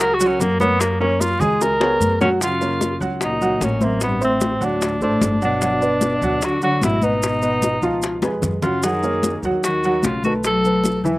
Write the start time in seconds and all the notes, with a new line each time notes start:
Already playing: C#2 F#3 F#4 F#5
0.00 A#4, high bongo, high conga, maracas
0.14 F#4
0.19 F#3 F#4 F#5, high bongo, high conga, maracas
0.27 C#4
0.39 F#2 A#3, high bongo, low bongo, high conga, maracas
0.60 A#3 B3 A#4 C#5, high conga, maracas
0.80 A#3, high bongo, high conga, maracas
1.00 A#3 C#4 A#4 C#5, high bongo, high conga
1.21 F4, high bongo, high conga, maracas
1.40 C#2 G#3 G#4 G#5, high bongo, low conga, maracas
1.61 A#4, high bongo, high conga, maracas
1.80 B3 G#4 C#5, high bongo, high conga
2.00 F#2, high conga, maracas
2.20 A#2 F#3 C#4 F#4 F#5, low bongo, high conga, maracas
2.41 C#3 F#3 F4 F#4 F#5, high bongo, high conga, maracas
2.61 A#3 A#4 C#5, high conga, maracas
2.81 high bongo, high conga, maracas
3.00 C#2 F#3 F#4 F#5, high conga, maracas
3.21 A#2 D#4, high bongo, high conga, maracas
3.41 F#3 F#4 F#5, high conga, maracas
3.61 A1 A#2 C#4, high bongo, low bongo, high conga, maracas
3.81 F#2 A#3 C4 C5 E5, high conga, maracas
4.01 G2 B3, high bongo, maracas
4.21 A2 C4 C5 E5, high bongo, high conga, maracas
4.41 high bongo, high conga, maracas
4.61 D2 A2 F#3 D4 F#4 F#5, high conga, maracas
4.81 high bongo, high conga, maracas
5.01 G#1 A2 A3 D4 A4 C5, high bongo, high conga, maracas
5.21 G1, high bongo, low bongo, high conga, maracas
5.41 B2 F#3 D4 F#4 F#5, high bongo, high conga, maracas
5.61 F#3 F#4 F#5, high bongo, high conga, maracas
5.81 B3 B4 D5, high conga, maracas
6.01 high bongo, high conga, maracas
6.22 D2 F#3 F#4 F#5, high conga, maracas
6.41 D3 F#4, high bongo, high conga, maracas
6.62 D3 F#3 F#4 F#5, high conga, maracas
6.81 G#1 B2 E4, high bongo, low bongo, high conga, maracas
7.02 B2 B3 D#4 B4 D#5, high conga, maracas
7.22 high bongo, high conga, maracas
7.42 B3 B4 D#5, high bongo, high conga, maracas
7.62 high bongo, high conga, maracas
7.82 C#2 F3 F4 F5, high conga, maracas
8.02 high bongo, high conga, maracas
8.22 F2 G#3 G#4 B4, high bongo, high conga, maracas
8.42 F#2, low bongo, low conga, maracas
8.62 C#3 F#3 F4 F#4 F#5, low bongo, low conga, maracas
8.83 D#3 F#3 F#4 G#4 F#5, high bongo, high conga, maracas
9.03 A#3 A#4 C#5, high conga, maracas
9.23 high bongo, high conga, maracas
9.43 D#2 F#3 F#4 F#5, high conga, maracas
9.63 D#3 F#4, high bongo, high conga, maracas
9.83 F#3 F#4 F#5, high conga, maracas
10.03 B1 C#3 F4, high bongo, low bongo, high conga, maracas
10.24 D#3 A3 F#4 A4 B4, high conga, maracas
10.44 F#3 A4, high bongo, high conga, maracas
10.64 A3 A4 B4, high bongo, high conga, maracas
10.84 high bongo, high conga, maracas
11.04 E2 E3 E4 E5, high conga, maracas